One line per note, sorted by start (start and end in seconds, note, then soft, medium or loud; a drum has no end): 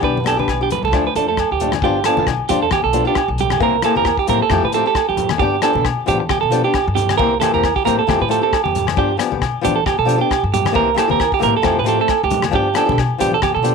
0.01 0.40 B1 medium
0.01 0.17 B3 medium
0.01 0.17 D4 medium
0.01 0.18 G4 medium
0.01 0.25 B4 medium
0.01 kick medium
0.17 high conga medium
0.24 0.37 B3 medium
0.24 0.38 D4 medium
0.24 0.35 G4 medium
0.24 0.38 A4 medium
0.24 cross-stick medium
0.24 closed hi-hat soft
0.24 low agogo medium
0.36 0.51 D4 soft
0.36 0.50 G4 medium
0.36 0.60 B4 medium
0.36 high conga medium
0.48 0.66 B1 medium
0.48 kick medium
0.48 cross-stick medium
0.48 low agogo medium
0.61 0.74 D4 soft
0.61 0.73 G4 medium
0.61 0.71 G4 medium
0.71 0.83 B4 medium
0.71 closed hi-hat soft
0.71 high conga medium
0.71 low conga medium
0.83 0.91 C2 medium
0.83 1.05 A4 medium
0.83 low conga medium
0.92 1.11 D2 medium
0.92 1.07 F3 medium
0.92 1.07 A3 medium
0.92 1.08 D4 medium
0.92 kick medium
0.92 cross-stick medium
0.92 low agogo medium
1.07 1.16 B4 medium
1.15 1.43 F2 medium
1.15 1.28 F3 medium
1.15 1.28 A3 medium
1.15 1.27 D4 medium
1.15 1.27 A4 medium
1.15 closed hi-hat soft
1.28 1.41 A3 soft
1.28 1.49 A4 medium
1.28 muted nylon-string guitar stroke medium
1.37 kick medium
1.37 cross-stick medium
1.37 low agogo medium
1.51 1.77 D2 medium
1.51 1.73 G4 medium
1.60 1.75 F3 medium
1.60 1.75 A3 medium
1.60 1.76 D4 medium
1.60 closed hi-hat soft
1.60 low conga medium
1.72 cross-stick medium
1.72 high conga medium
1.72 low agogo medium
1.82 2.00 G1 medium
1.82 1.97 F3 medium
1.82 1.98 B3 medium
1.82 1.98 D4 medium
1.82 1.98 F4 medium
1.82 2.05 G4 medium
1.82 kick medium
2.04 2.18 F3 medium
2.04 2.18 B3 medium
2.04 2.17 D4 medium
2.04 2.17 F4 medium
2.04 2.27 A4 medium
2.04 cross-stick medium
2.04 closed hi-hat medium
2.04 low agogo medium
2.17 2.36 B1 medium
2.17 2.31 B3 soft
2.17 2.31 D4 soft
2.17 2.30 F4 medium
2.17 high conga medium
2.27 kick medium
2.27 cross-stick medium
2.27 low agogo medium
2.49 2.68 E2 medium
2.49 2.64 F3 medium
2.49 2.65 D4 medium
2.49 2.64 F4 medium
2.49 2.61 G4 medium
2.49 closed hi-hat medium
2.49 low conga medium
2.63 2.72 A4 medium
2.71 2.83 G4 medium
2.71 kick medium
2.71 cross-stick medium
2.71 high conga medium
2.71 low agogo medium
2.84 3.02 B1 medium
2.84 3.05 A4 medium
2.93 3.06 F3 medium
2.93 3.06 B3 medium
2.93 3.06 D4 medium
2.93 3.04 F4 medium
2.93 closed hi-hat soft
3.05 3.20 B3 soft
3.05 3.19 D4 medium
3.05 3.18 F4 medium
3.05 3.28 G4 medium
3.15 kick medium
3.15 cross-stick medium
3.15 low agogo medium
3.28 3.55 B1 medium
3.38 3.61 G4 medium
3.38 closed hi-hat soft
3.38 low conga medium
3.50 cross-stick medium
3.50 high conga medium
3.50 low agogo medium
3.60 3.79 C2 medium
3.60 3.75 E3 medium
3.60 3.75 A#3 medium
3.60 3.76 C4 medium
3.60 3.83 A#4 medium
3.60 muted nylon-string guitar stroke medium
3.60 kick medium
3.82 3.95 E3 medium
3.82 3.96 A#3 medium
3.82 3.95 C4 medium
3.82 3.94 G4 medium
3.82 3.96 A4 medium
3.82 cross-stick medium
3.82 closed hi-hat soft
3.82 low agogo medium
3.95 4.14 E2 medium
3.95 4.09 A#3 medium
3.95 4.09 C4 soft
3.95 4.08 G4 medium
3.95 4.18 A#4 medium
3.95 high conga medium
4.05 kick medium
4.05 cross-stick medium
4.05 low agogo medium
4.17 4.28 G4 medium
4.17 kick medium
4.27 4.38 A2 medium
4.27 4.42 E3 medium
4.27 4.42 A#3 medium
4.27 4.43 C4 medium
4.27 4.43 G4 medium
4.27 4.41 A#4 medium
4.27 closed hi-hat soft
4.27 low conga medium
4.42 4.63 A4 medium
4.50 4.61 F2 loud
4.50 4.65 F3 medium
4.50 4.65 A3 medium
4.50 4.66 G4 medium
4.50 muted nylon-string guitar stroke medium
4.50 kick medium
4.50 cross-stick medium
4.50 high conga medium
4.50 low agogo medium
4.63 4.81 A2 medium
4.63 4.74 B4 medium
4.72 4.85 F3 medium
4.72 4.86 A3 medium
4.72 4.86 C4 medium
4.72 4.84 G4 medium
4.72 4.86 A4 medium
4.72 closed hi-hat soft
4.86 4.99 A3 soft
4.86 4.98 G4 medium
4.86 5.08 A4 medium
4.95 kick medium
4.95 cross-stick medium
4.95 low agogo medium
5.09 5.35 F2 medium
5.09 5.30 G4 medium
5.17 closed hi-hat soft
5.17 low conga medium
5.29 cross-stick medium
5.29 high conga medium
5.29 low agogo medium
5.39 5.58 G2 medium
5.39 5.55 B3 medium
5.39 5.55 D4 medium
5.39 5.61 G4 medium
5.39 5.55 G4 medium
5.39 muted nylon-string guitar stroke medium
5.39 kick medium
5.61 5.74 F3 medium
5.61 5.74 B3 medium
5.61 5.73 D4 medium
5.61 5.72 G4 medium
5.61 5.84 A4 medium
5.61 cross-stick medium
5.61 closed hi-hat medium
5.61 low agogo medium
5.73 5.93 B2 medium
5.73 5.88 B3 soft
5.73 5.87 D4 soft
5.73 muted nylon-string guitar stroke medium
5.73 high conga medium
5.85 kick medium
5.85 cross-stick medium
5.85 low agogo medium
6.06 6.26 E3 loud
6.06 6.21 F3 medium
6.06 6.21 B3 medium
6.06 6.22 D4 medium
6.06 6.22 G4 medium
6.06 6.20 G4 medium
6.06 closed hi-hat soft
6.06 low conga medium
6.20 muted clean electric guitar stroke medium
6.29 6.40 G4 medium
6.29 kick medium
6.29 cross-stick medium
6.29 high conga medium
6.29 low agogo medium
6.41 6.60 B2 medium
6.41 6.63 A4 medium
6.51 6.64 F3 medium
6.51 6.64 B3 medium
6.51 6.64 D4 medium
6.51 6.63 G4 medium
6.51 closed hi-hat soft
6.64 6.78 B3 soft
6.64 6.77 D4 medium
6.64 6.77 G4 medium
6.64 6.86 G4 medium
6.74 kick medium
6.74 cross-stick medium
6.74 low agogo medium
6.87 7.13 G2 loud
6.95 7.17 G4 medium
6.95 closed hi-hat soft
6.95 low conga medium
7.09 cross-stick medium
7.09 high conga medium
7.09 low agogo medium
7.17 7.37 C2 medium
7.17 7.33 E3 medium
7.17 7.33 A#3 medium
7.17 7.33 C4 medium
7.17 7.34 G4 medium
7.17 7.39 A#4 medium
7.17 kick medium
7.40 7.53 E3 medium
7.40 7.53 A#3 medium
7.40 7.53 C4 medium
7.40 7.52 G4 medium
7.40 7.52 A4 medium
7.40 cross-stick medium
7.40 closed hi-hat soft
7.40 high conga medium
7.40 low agogo medium
7.54 7.72 E2 medium
7.54 7.67 A#3 medium
7.54 7.67 C4 medium
7.54 7.66 G4 medium
7.54 7.75 A#4 medium
7.54 high conga medium
7.64 kick medium
7.64 cross-stick medium
7.64 low agogo medium
7.76 7.85 G4 medium
7.76 kick medium
7.85 7.97 A2 medium
7.85 8.00 E3 medium
7.85 8.00 A#3 medium
7.85 8.00 C4 medium
7.85 8.01 G4 medium
7.85 7.97 A#4 medium
7.85 closed hi-hat soft
7.85 low conga medium
7.99 8.20 A4 medium
8.07 8.19 F2 loud
8.07 8.22 F3 medium
8.07 8.22 A3 medium
8.07 8.23 C4 medium
8.07 8.23 G4 medium
8.07 kick medium
8.07 cross-stick medium
8.07 high conga medium
8.07 low agogo medium
8.21 8.39 A2 medium
8.21 8.30 B4 medium
8.28 8.42 F3 medium
8.28 8.42 A3 medium
8.28 8.42 C4 medium
8.28 8.40 G4 medium
8.28 8.42 A4 medium
8.28 closed hi-hat soft
8.41 8.56 A3 soft
8.41 8.55 C4 medium
8.41 8.55 G4 medium
8.41 8.63 A4 medium
8.53 kick medium
8.53 cross-stick medium
8.53 low agogo medium
8.64 8.91 F2 medium
8.64 8.86 G4 medium
8.64 high conga medium
8.75 closed hi-hat soft
8.75 low conga medium
8.87 cross-stick medium
8.87 high conga medium
8.87 low agogo medium
8.96 9.15 G2 medium
8.96 9.11 F3 medium
8.96 9.12 B3 medium
8.96 9.12 D4 medium
8.96 9.12 G4 medium
8.96 9.19 G4 medium
8.96 kick medium
9.17 9.31 F3 medium
9.17 9.31 B3 medium
9.17 9.32 D4 medium
9.17 9.30 G4 medium
9.17 muted clean electric guitar stroke medium
9.17 cross-stick medium
9.17 closed hi-hat medium
9.17 low agogo medium
9.31 9.51 B2 medium
9.31 9.45 B3 soft
9.31 9.44 G4 medium
9.31 high conga medium
9.42 kick medium
9.42 cross-stick medium
9.42 low agogo medium
9.61 9.77 F3 medium
9.61 9.78 B3 medium
9.61 9.79 D4 medium
9.61 9.78 G4 medium
9.61 9.75 G4 medium
9.61 closed hi-hat medium
9.61 low conga medium
9.66 9.83 E3 medium
9.76 9.86 A4 medium
9.86 9.98 G4 medium
9.86 kick medium
9.86 cross-stick medium
9.86 high conga medium
9.86 low agogo medium
9.99 10.17 B2 medium
9.99 10.20 A4 medium
10.05 10.20 F3 medium
10.05 10.18 B3 medium
10.05 10.17 D4 medium
10.05 10.17 G4 medium
10.05 closed hi-hat medium
10.18 10.33 B3 soft
10.18 10.33 D4 soft
10.18 10.32 G4 medium
10.18 10.43 G4 medium
10.31 kick medium
10.31 cross-stick medium
10.31 low agogo medium
10.43 10.70 G2 medium
10.54 10.75 G4 medium
10.54 closed hi-hat medium
10.54 low conga medium
10.65 cross-stick medium
10.65 high conga medium
10.65 low agogo medium
10.72 10.93 C2 medium
10.72 10.88 E3 medium
10.72 10.89 A#3 medium
10.72 10.89 C4 medium
10.72 10.90 G4 medium
10.72 10.97 A#4 medium
10.72 kick medium
10.94 11.09 E3 medium
10.94 11.08 A#3 medium
10.94 11.08 C4 medium
10.94 11.07 G4 medium
10.94 cross-stick medium
10.94 closed hi-hat soft
10.94 low agogo medium
10.98 11.10 A4 medium
11.08 11.29 E2 medium
11.08 11.23 A#3 soft
11.08 11.22 C4 medium
11.08 11.22 G4 medium
11.08 11.32 A#4 medium
11.08 high conga medium
11.20 kick medium
11.20 cross-stick medium
11.20 low agogo medium
11.32 11.43 G4 medium
11.32 kick medium
11.39 11.55 E3 medium
11.39 11.56 A#3 medium
11.39 11.56 C4 medium
11.39 11.56 G4 medium
11.39 closed hi-hat soft
11.39 low conga medium
11.43 11.53 A2 medium
11.43 11.55 A#4 medium
11.57 11.77 A4 medium
11.62 11.75 F2 loud
11.62 11.78 F3 medium
11.62 11.78 A3 medium
11.62 11.79 C4 medium
11.62 11.79 G4 medium
11.62 kick medium
11.62 cross-stick medium
11.62 high conga medium
11.62 low agogo medium
11.79 11.96 A2 medium
11.79 11.88 B4 medium
11.84 11.98 F3 medium
11.84 11.99 A3 medium
11.84 11.98 C4 medium
11.84 12.00 G4 medium
11.84 closed hi-hat soft
11.88 12.00 A4 medium
11.99 12.13 A3 soft
11.99 12.12 C4 medium
11.99 12.22 A4 medium
12.08 kick medium
12.08 cross-stick medium
12.08 low agogo medium
12.23 12.49 D2 medium
12.23 12.44 G4 medium
12.30 closed hi-hat soft
12.30 low conga medium
12.42 cross-stick medium
12.42 high conga medium
12.42 low agogo medium
12.51 12.72 G2 medium
12.51 12.67 F3 medium
12.51 12.67 B3 medium
12.51 12.68 D4 medium
12.51 12.68 G4 medium
12.51 kick medium
12.55 12.76 G4 loud
12.74 12.88 F3 medium
12.74 12.86 B3 medium
12.74 12.85 D4 medium
12.74 12.85 G4 medium
12.74 12.98 A4 medium
12.74 cross-stick medium
12.74 closed hi-hat medium
12.74 low agogo medium
12.86 13.07 B2 medium
12.86 13.01 B3 medium
12.86 13.00 D4 medium
12.86 high conga medium
12.98 kick medium
12.98 cross-stick medium
12.98 low agogo medium
13.18 13.39 E3 medium
13.18 13.34 F3 medium
13.18 13.35 B3 medium
13.18 13.35 D4 medium
13.18 13.35 G4 medium
13.18 13.33 G4 medium
13.18 closed hi-hat medium
13.18 low conga medium
13.34 13.43 A4 medium
13.42 13.54 G4 medium
13.42 kick medium
13.42 cross-stick medium
13.42 high conga medium
13.42 low agogo medium
13.55 13.74 B2 medium
13.55 13.75 A4 medium
13.63 13.75 F3 medium
13.63 13.75 B3 medium
13.63 13.74 D4 medium
13.63 13.73 G4 medium
13.63 closed hi-hat medium